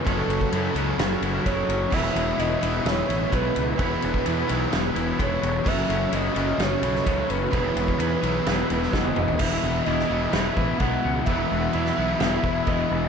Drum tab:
CC |----------------|x---------------|----------------|x---------------|
RD |x-x-x-x-x-x-x-x-|--x-x-x-x-x-x-x-|x-x-x-x-x-x-x-x-|--x-x-x-x-x-x-x-|
SD |--------o-------|--------o-------|--------o-------|--------o--o----|
T1 |----------------|----------------|----------------|----------------|
T2 |----------------|----------------|----------------|----------------|
FT |----------------|----------------|----------------|----------------|
BD |o--o--------o---|o-----------o---|o--o--------o---|o-----------o---|

CC |----------------|x---x---x---x---|x---x---x---x---|
RD |x-x-x-x-x-x-----|----------------|----------------|
SD |--------o--oo---|-----o--o-------|-----o--o-------|
T1 |-------------o--|----------------|----------------|
T2 |--------------o-|----------------|----------------|
FT |---------------o|----------------|----------------|
BD |o--o--------o---|o---------o-o---|o---------o-o---|